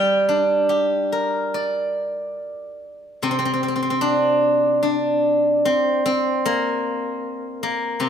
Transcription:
guzheng
Already playing: G3 F5 G5
0.29 D4
0.69 G4
1.12 A#4
1.54 D5
3.22 C3 C4
3.31 C4
3.39 C4
3.45 C4
3.54 C4
3.63 C4
3.68 C4
3.76 C4
3.83 C4
3.90 C4
4.01 D4
4.83 D4
5.65 C4
6.06 C4
6.46 A#3
7.63 A#3
8.00 C3 C4

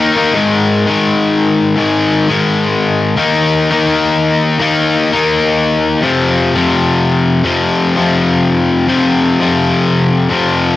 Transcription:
overdriven electric guitar
Already playing: D#3
0.00 A#3 D#4
0.16 D#3 A#3 D#4
0.34 G#2 D#3 G#3
0.86 G#2 D#3 G#3
1.76 G#2 D#3 G#3
2.28 G#2 D#3 G#3
3.17 D#3 A#3 D#4
3.71 D#3 A#3 D#4
4.59 D#3 A#3 D#4
5.12 D#3 A#3 D#4
6.02 F2 C3 F3
6.55 F2 C3 F3
7.43 F2 C3 F3
7.96 F2 C3 F3
8.88 F2 C3 F3
9.40 F2 C3 F3
10.29 F2 C3 F3

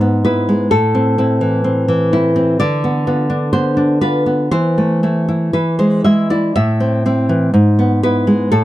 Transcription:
nylon-string guitar
Already playing: G#2 E5
0.01 B3
0.25 B3 E4 B4
0.49 G#3
0.71 A2 A4
0.95 C4
1.18 C4 E4
1.41 E3
1.64 C4
1.88 E3
2.13 C4 E4
2.36 C4
2.60 D3 D5
2.84 B3
3.07 B3 F4
3.30 D4
3.53 B3 C5
3.77 D4
4.01 B3 F4 B4
4.26 B3
4.51 E3 C5
4.78 A3
5.03 A3 E4
5.28 E4
5.53 E3 B4
5.79 G#3 C5
6.04 G#3 E4 E5
6.30 E4 D5
6.56 A2 E5
6.80 C4
7.06 C4 E4
7.29 E3
7.54 G#2
7.79 B3
8.03 B3 E4 B4
8.27 G#3
8.52 A2 A4

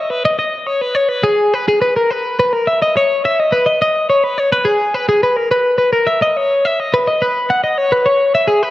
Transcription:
clean electric guitar
Already playing: D#5
0.10 B4
0.25 D#5
0.39 D#5
0.67 C#5
0.81 B4
0.95 C#5
1.09 B4
1.24 G#4
1.54 B4
1.68 G#4
1.82 B4
1.96 A#4
2.11 B4
2.39 B4
2.53 A#4
2.67 E5
2.82 D#5
2.97 C#5
3.25 E5
3.40 D#5
3.52 B4
3.66 D#5
3.82 D#5
4.10 C#5
4.24 B4
4.38 C#5
4.52 B4
4.65 G#4
4.94 B4
5.09 G#4
5.23 B4
5.37 A#4
5.51 B4
5.78 B4
5.93 A#4
6.07 E5
6.22 D#5
6.37 C#5
6.65 E5
6.80 D#5
6.94 B4
7.08 D#5
7.22 B4
7.50 F#5
7.64 D#5
7.78 C#5
7.92 B4
8.06 C#5
8.35 E5
8.48 G#4
8.63 B4

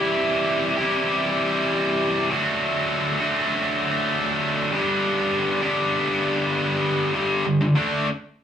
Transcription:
distorted electric guitar
Already playing: C3 E3 G3 E4 G4
0.77 E3 G3 E4 G4
0.81 C3
2.29 D3 F#3 A3 D4 F#4
3.20 D3 F#3 A3 D4 F#4
4.71 G2 D3 G3 B3 D4 G4
5.62 G2 D3 G3 B3 D4 G4
7.14 G2 D3 G3
7.45 G2 D3
7.61 G2 D3
7.75 D3 A3 D4

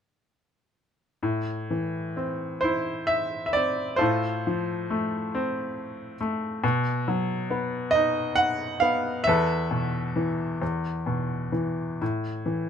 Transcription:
upright piano
1.23 A2
1.70 E3
2.17 C4
2.61 E4 C5
3.07 E5
3.46 E5
3.53 C4 D5
3.96 F4 A4 C5
4.01 A2
4.47 F3
4.90 A3
5.35 C4
6.21 A3
6.64 B2
7.08 F#3
7.50 B3
7.91 D#5
7.95 D#4
8.35 F#5
8.80 B3 F5
9.24 E2 E5
9.28 A4 B4
9.71 B2
10.16 E3
10.62 E2
11.06 B2
11.52 E3
12.01 A2
12.46 E3

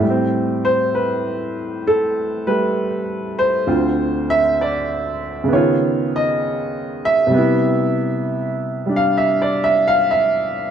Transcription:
upright piano
Already playing: E5
0.00 A2 G3
0.10 C4
0.65 C5
0.95 B4
1.87 A4
2.47 G3 A3 B4
3.39 C5
3.67 D2 D3 C4 F4
4.30 E5
4.61 D5
5.44 C#3
5.48 D#3 B3
5.53 F4 C#5
6.16 D#5
7.05 E5
7.27 C3 G3
7.34 B3 E4
8.86 G3 D4
8.96 F5
9.18 E5
9.42 D5
9.64 E5
9.88 F5
10.11 E5

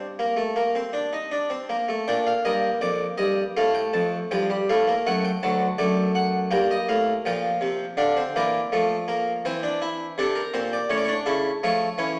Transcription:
harpsichord
Already playing: G2 A#5
0.19 A#3
0.37 A3
0.56 A#3
0.75 C4
0.93 D4
1.13 D#4
1.31 D4
1.50 C4
1.69 A#3
1.89 A3
2.08 A#2 D4 G5
2.27 F5
2.45 G2 A#3 D#5
2.81 F2 D5
3.18 G2 D#5
3.57 A2 A3 F5
3.75 G5
3.93 F2 A5
4.31 G2 F3 G5
4.50 G3
4.69 A2 A3 F5
4.88 A#3
5.07 F#2 A3 F#5
5.25 G5
5.43 D2 F#3 A5
5.78 F#2 A3 D5
6.15 F#5
6.51 G2 A#3 G5
6.71 D#5
6.89 A2 F5
7.25 A#2 F3 G5
7.61 C3
7.97 D3 D4 F5
8.17 C4
8.36 E3 A#3 D5
8.72 F3 A3
9.08 A#3
9.45 E3 C4 C5
9.63 D4
9.82 E4
10.18 C3 D4 A4
10.35 A#4
10.54 A#2 C4 C5
10.73 D5
10.90 A2 C#4 C#5
10.98 D5
11.04 D4 C#5
11.26 C#3 E4 A4
11.63 F3 A3 C#5
11.98 E3 C#4

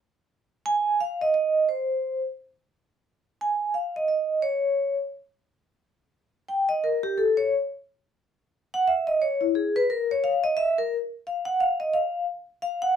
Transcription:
vibraphone
0.66 G#5
1.01 F5
1.21 D#5
1.34 D#5
1.69 C5
3.41 G#5
3.74 F5
3.96 D#5
4.08 D#5
4.42 C#5
6.49 G5
6.69 D#5
6.84 A#4
7.03 G4
7.18 A4
7.37 C#5
8.74 F#5
8.88 E5
9.07 D#5
9.22 C#5
9.41 E4
9.55 G#4
9.76 B4
9.90 A#4
10.11 C#5
10.24 F5
10.44 D#5
10.57 E5
10.78 A#4
11.27 F5
11.45 F#5
11.60 F5
11.80 D#5
11.93 F5
12.62 F5
12.82 F#5

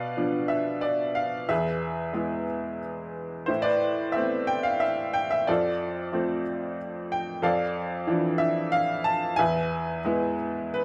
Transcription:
upright piano
Already playing: B2 B4 D5 F5
0.17 F3 B3 D4
0.48 E5
0.81 D5
1.15 F5
1.49 E2 G#4 B4 E5
2.13 G#3 B3 E4
3.46 A2 E4 C5
3.62 B4 D5
4.12 A3 B3 E5
4.16 C4
4.47 G5
4.63 F5
4.80 E5
5.14 G5
5.31 E5
5.47 F2 F4 A4 D5
6.12 F3 A3 C4
7.12 G5
7.42 F2 A4 D5 F5
8.07 E3 F3 D4
8.38 E5
8.72 F5
9.04 A5
9.36 E2 B4 E5 G#5
10.05 G#3 B3 E4
10.74 B4

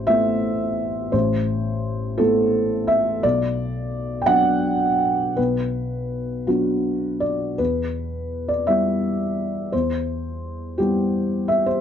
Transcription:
felt piano
Already playing: A1 C5
0.07 A3 B3 E4 E5
1.12 A1 C5
2.18 A3 B3 E4 A4
2.87 E5
3.23 B1 D5
4.22 G5
4.26 F#3 B3 D4 F#5
5.37 B1 B4
6.47 F#3 B3 D4 F#4
7.20 D5
7.58 E2 B4
8.48 D5
8.67 G3 B3 E4 E5
9.72 E2 C5
10.78 G3 B3 E4 G4
11.48 E5
11.66 C5

